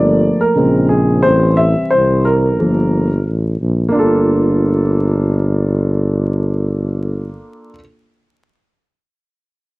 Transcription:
Already playing: G1 F3 A3 A#3 D5
0.41 A#4
0.56 A#1 C#3 G#3 C4
0.89 G#4
1.23 A1 E3 G3 C4 C5
1.57 E5
1.78 C2
1.91 C2 C5
2.25 A#4
2.59 G1 F3 A#3 A4
3.27 A1
3.61 A#1
3.89 A#3 D4
3.94 G1 F4
3.99 A4

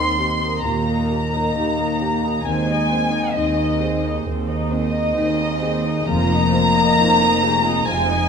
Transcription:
Already playing: D#2 D#3 A#3 C4 D#4 A#4 D#5 G5 A#5 C6
0.19 A#3 G4 G5
0.42 D#4 A#4
0.64 D#2 A#2 A#3 G4 A#5
0.88 D#4 A#4
1.10 A#3 G4 A#4
1.33 D#4 A#4 D#5
1.55 D#2 A#3 D#4 G4 G5
1.78 D#4 A#4 A#5
2.01 A#3 G4 G5
2.24 D#4 A#4
2.45 D#2 D#3 G#3 C4 C5 G#5
2.69 D#4 D#5
2.91 C4 C5
3.13 D#4 D#5
3.35 D#2 D#3 C4 D#4 C5 D#5 G#5
3.59 D#4 D#5 C6
3.81 C4 G#4 C5 G#5
4.03 D#4 C5 D#5
4.25 D#2 D#3 C4 C5
4.48 D#4 D#5
4.70 D#3 C4 C5 D#5
4.93 D#4 D#5
5.16 D#2 C4 D#4 C5 G#5
5.39 D#4 D#5 C6
5.62 C4 G#4 C5 G#5
5.85 D#4 C5 D#5
6.08 F1 F2 F3 A#3 F4 C5 A#5
6.32 D#4 D#5
6.54 C4 F4 C5
6.77 D#4 D#5
6.99 F1 F2 D#4 F4 C5 G#5
7.22 D#4 D#5
7.43 F4 G#4 C5 G#5
7.66 D#4 C5 D#5
7.88 F1 F2 C3 G#3 C4 F4 C5 G#5
8.10 D#4 D#5

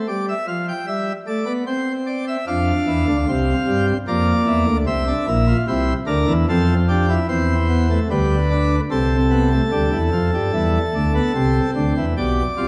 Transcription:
0.08 G3 D5
0.29 E5
0.48 F3 F5
0.68 G5
0.87 G3 E5
1.27 A3 D5
1.46 B3
1.67 C4 C5
2.07 D5
2.28 E5
2.47 F2 F3 D4 F5
2.87 E2 E3
3.08 D2 D3
3.28 C2 C3 C4
3.67 G2 G3
4.08 F2 F3 A#3 D5
4.47 E2 E3
4.67 D2 D3
4.86 C2 C3 C4 E5
5.08 D4
5.28 A#1 A#2 E4
5.47 F4
5.68 C2 C3 E4 C5
6.07 D2 D3 D4 A#4
6.28 E2 E3
6.49 F2 F3 C4 A4
6.89 D4 G4
7.09 E4
7.28 E2 E3 C4 C5
7.69 B3
7.90 A3
8.10 D2 D3 G3 B4
8.51 D4
8.91 C2 C3 C4 A4
9.31 B3
9.52 A3
9.72 D2 D3 G3
9.92 E2 E3
10.13 F2 F3
10.34 G2 G3
10.53 E2 E3 G3
10.94 D2 D3 A3
11.15 B3
11.35 C2 C3 C4
11.76 D2 D3
11.97 E2 E3
12.17 B1 B2 G4 D5
12.57 C2 C3 F4

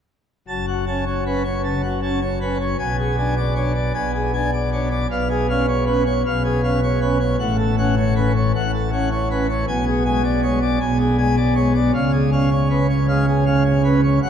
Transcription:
0.48 F#1 F#2 A5
0.67 F#4
0.87 C#4 A5
1.06 C#5
1.26 C#4 B4
1.44 C#5
1.64 C#3 A5
1.83 F#4
2.03 C#4 A5
2.21 C#5
2.41 C#4 B4
2.61 C#5
2.79 B1 B2 G#5
2.99 G#4
3.17 D4 G#5
3.37 D5
3.56 D4 C#5
3.75 D5
3.94 B1 B2 G#5
4.15 G#4
4.34 D4 G#5
4.53 D5
4.72 D4 C#5
4.91 D5
5.11 B1 B2 F5
5.30 G#4
5.49 C#4 F5
5.68 C#5
5.87 C#4 B4
6.06 C#5
6.26 B1 B2 F5
6.45 G#4
6.63 C#4 F5
6.83 C#5
7.01 C#4 B4
7.20 C#5
7.39 A1 A2 F#5
7.58 A4
7.78 C#4 F#5
7.97 C#5
8.16 C#4 B4
8.36 C#5
8.54 A1 A2 F#5
8.74 A4
8.92 C#4 F#5
9.12 C#5
9.31 C#4 B4
9.49 C#5
9.68 B1 B2 G#5
9.86 G#4
10.05 G#3 G#5
10.24 D5
10.43 G#3 C#5
10.62 D5
10.80 B1 B2 G#5
11.00 G#4
11.18 G#3 G#5
11.37 D5
11.55 G#3 C#5
11.75 D5
11.94 C#2 C#3 F5
12.13 G#4
12.32 C#4 F5
12.51 C#5
12.70 C#4 B4
12.89 C#5
13.08 G#3 F5
13.27 G#4
13.46 C#4 F5
13.64 C#5
13.84 C#4 B4
14.03 C#5
14.23 F#1 F#2 F#5

